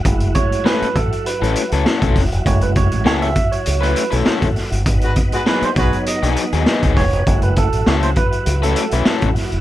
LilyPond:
<<
  \new Staff \with { instrumentName = "Tine electric piano" } { \time 4/4 \key fis \dorian \tempo 4 = 100 r8 cis''8 b'8 a'8 b'4 r4 | cis''16 b'16 cis''8 cis''16 e''8 cis''8 b'8 a'4 r16 | r4 b'16 bis'16 cis''8 dis''4. cis''8~ | cis''16 b'16 a'8 fis'16 bis'16 b'8. a'8 e'4~ e'16 | }
  \new Staff \with { instrumentName = "Tine electric piano" } { \time 4/4 \key fis \dorian <gis a e'>4. r2 r8 | <gis a e'>4. r2 r8 | r4. <fis b dis'>4. r4 | <gis a e'>8 r2. r8 | }
  \new Staff \with { instrumentName = "Horn section" } { \time 4/4 \key fis \dorian r1 | r1 | r16 <gis fis' b'>16 r16 <gis fis' b'>16 r8 <gis fis' b'>8 r2 | r1 | }
  \new Staff \with { instrumentName = "Tonewheel organ" } { \time 4/4 \key fis \dorian <fis e' fis'>1~ | <fis e' fis'>1 | <b dis' fis'>1 | <fis e' fis'>1 | }
  \new Staff \with { instrumentName = "Overdriven electric guitar" } { \time 4/4 \key fis \dorian r4 <a cis' e' a'>16 r4 <a cis' e' a'>16 r16 <a cis' e' a'>16 <a cis' e' a'>16 <a cis' e' a'>16 r8 | r4 <a cis' e' a'>16 r4 <a cis' e' b'>16 r16 <a cis' e' b'>16 <a cis' e' a'>16 r8. | r4 <fis b dis' gis'>16 r4 <fis b dis' gis'>16 r16 <fis b dis' gis'>16 <fis b dis' gis'>16 <fis b dis' gis'>16 r8 | r4 <a cis' e' a'>16 r4 <a cis' e' b'>16 r16 <a cis' e' b'>16 <a cis' e' a'>16 r8. | }
  \new Staff \with { instrumentName = "Fingered electric bass" } { \clef bass \time 4/4 \key fis \dorian fis,,8 r4 a,,16 r8 a,,16 r16 cis,16 r16 b,,16 e,,16 eis,,16 | fis,,8. a,,16 cis,8 r8 cis,8 r16 b,,16 r16 a,,16 r16 g,,16 | gis,,8 r4 b,,16 r8 b,,16 r16 dis,16 r16 cis,16 e,,16 eis,,16 | fis,,8. a,,16 cis,8 r8 cis,8 r16 b,,16 r16 a,,16 r16 eis,,16 | }
  \new DrumStaff \with { instrumentName = "Drums" } \drummode { \time 4/4 <hh bd>16 hh16 <hh bd>16 hh16 sn16 hh16 <hh bd>16 hh16 hh16 hh16 hh16 hh16 sn16 <hh bd>16 <hho bd sn>16 hh16 | <hh bd>16 hh16 <hh bd>16 hh16 sn16 hh16 <hh bd>16 hh16 hh16 hh16 hh16 hh16 sn16 <hh bd>16 <hho sn>16 hh16 | <hh bd>16 hh16 <hh bd>16 hh16 sn16 hh16 <hh bd>16 hh16 hh16 hh16 hh16 hh16 sn16 <hh bd>16 <hho bd sn>16 hh16 | <hh bd>16 hh16 <hh bd>16 hh16 sn16 hh16 <hh bd>16 hh16 hh16 hh16 hh16 hh16 sn16 <hh bd>16 <hho sn>16 hh16 | }
>>